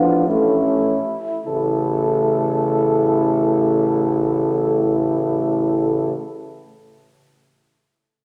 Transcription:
Already playing: tuba A1, euphonium F3, trombone B3, french horn section D4, cornet F4
0.26 trombone A3, euphonium A3, french horn section C#4, cornet E4
1.46 tuba A1, trombone C#3, euphonium A3, french horn section E4, cornet A4

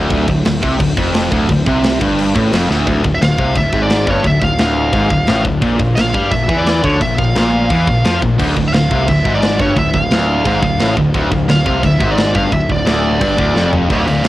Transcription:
Already playing: distorted electric guitar D2
0.10 picked electric bass D1, distorted electric guitar D2, kick, crash
0.28 picked electric bass D1, distorted electric guitar D2, kick, crash
0.45 picked electric bass D1, distorted electric guitar D2, snare, crash
0.63 picked electric bass C2, distorted electric guitar C3, kick, crash
0.80 picked electric bass D1, distorted electric guitar D2, kick, crash
0.97 picked electric bass F1, distorted electric guitar F2, kick, crash
1.14 snare, crash
1.31 picked electric bass D1, distorted electric guitar D2, kick, crash
1.49 picked electric bass D1, distorted electric guitar D2, kick, crash
1.66 picked electric bass C2, distorted electric guitar C3, kick, crash
1.83 snare, crash
2.01 picked electric bass G1, distorted electric guitar G2, kick, crash
2.18 crash
2.35 picked electric bass A1, distorted electric guitar A2, kick, crash
2.51 picked electric bass F1, distorted electric guitar F2, snare, crash
2.70 picked electric bass D1, distorted electric guitar D2, snare
2.87 picked electric bass D1, distorted electric guitar D2, kick, china
3.04 picked electric bass D1, distorted electric guitar D2, kick
3.15 lead electric guitar E5
3.21 picked electric bass D1, distorted electric guitar D2, lead electric guitar F5, snare, china
3.38 picked electric bass C2, distorted electric guitar C3, kick
3.56 picked electric bass D1, distorted electric guitar D2, lead electric guitar E5, kick, china
3.73 picked electric bass G#1, distorted electric guitar G#2, kick
3.83 lead electric guitar D5
3.90 snare, china
4.07 picked electric bass G1, distorted electric guitar G2, lead electric guitar C#5, kick
4.24 picked electric bass D1, distorted electric guitar D2, lead electric guitar E5, kick, china
4.42 picked electric bass D1, distorted electric guitar D2, lead electric guitar F5, kick
4.59 picked electric bass D1, distorted electric guitar D2, snare, china
4.93 picked electric bass G#1, distorted electric guitar G#2, kick, china
5.10 picked electric bass D1, distorted electric guitar D2, kick
5.27 picked electric bass A1, distorted electric guitar A2, snare, china
5.45 picked electric bass D1, distorted electric guitar D2, kick
5.62 picked electric bass A#1, distorted electric guitar A#2, kick, china
5.80 picked electric bass A#1, distorted electric guitar A#2, kick
5.96 picked electric bass A#1, distorted electric guitar A#2, lead electric guitar F5, snare, china
6.14 picked electric bass G2, distorted electric guitar G3, kick
6.31 picked electric bass A#1, distorted electric guitar A#2, lead electric guitar E5, kick, china
6.49 picked electric bass E2, distorted electric guitar E3, kick
6.58 lead electric guitar D5
6.66 snare, china
6.84 picked electric bass D2, distorted electric guitar D3, lead electric guitar C#5, kick
7.01 picked electric bass A#1, distorted electric guitar A#2, lead electric guitar E5, kick, china
7.18 picked electric bass A#1, distorted electric guitar A#2, lead electric guitar F5, kick
7.35 picked electric bass A#1, distorted electric guitar A#2, snare, china
7.70 picked electric bass E2, distorted electric guitar E3, kick, china
7.87 picked electric bass A#1, distorted electric guitar A#2, kick
8.04 picked electric bass F2, distorted electric guitar F3, snare, china
8.22 picked electric bass A#1, distorted electric guitar A#2, kick
8.39 picked electric bass D1, distorted electric guitar D2, kick, china, crash
8.57 picked electric bass D1, distorted electric guitar D2, kick
8.68 lead electric guitar E5
8.73 picked electric bass D1, distorted electric guitar D2, lead electric guitar F5, snare, china
8.91 picked electric bass C2, distorted electric guitar C3, kick
9.08 picked electric bass D1, distorted electric guitar D2, lead electric guitar E5, kick, china
9.25 picked electric bass G#1, distorted electric guitar G#2, kick
9.34 lead electric guitar D5
9.42 snare, china
9.59 picked electric bass G1, distorted electric guitar G2, lead electric guitar C#5, kick
9.77 picked electric bass D1, distorted electric guitar D2, lead electric guitar E5, kick, china
9.94 picked electric bass D1, distorted electric guitar D2, lead electric guitar F5, kick
10.11 picked electric bass D1, distorted electric guitar D2, snare, china
10.45 picked electric bass G#1, distorted electric guitar G#2, kick, china
10.62 picked electric bass D1, distorted electric guitar D2, kick
10.79 picked electric bass A1, distorted electric guitar A2, snare, china
10.97 picked electric bass D1, distorted electric guitar D2, kick
11.14 picked electric bass D1, distorted electric guitar D2, kick, china
11.31 picked electric bass D1, distorted electric guitar D2, kick
11.48 picked electric bass D1, distorted electric guitar D2, lead electric guitar F5, snare, china
11.66 picked electric bass C2, distorted electric guitar C3, kick
11.83 picked electric bass D1, distorted electric guitar D2, lead electric guitar E5, kick, china
12.00 picked electric bass G#1, distorted electric guitar G#2, kick
12.11 lead electric guitar D5
12.18 snare, china
12.35 picked electric bass G1, distorted electric guitar G2, lead electric guitar F5, kick
12.52 picked electric bass D1, distorted electric guitar D2, lead electric guitar E5, kick, china
12.69 picked electric bass D1, distorted electric guitar D2, lead electric guitar D5, kick
12.86 picked electric bass D1, distorted electric guitar D2, snare, china
13.21 picked electric bass G1, distorted electric guitar G2, kick, china
13.38 picked electric bass D1, distorted electric guitar D2, kick
13.56 picked electric bass F1, distorted electric guitar F2, snare
13.73 floor tom
13.90 picked electric bass D1, distorted electric guitar D2, lead electric guitar D5 F5, kick, crash
14.08 picked electric bass D1, distorted electric guitar D2, lead electric guitar D5 F5, crash
14.24 picked electric bass D1, distorted electric guitar D2, snare, crash

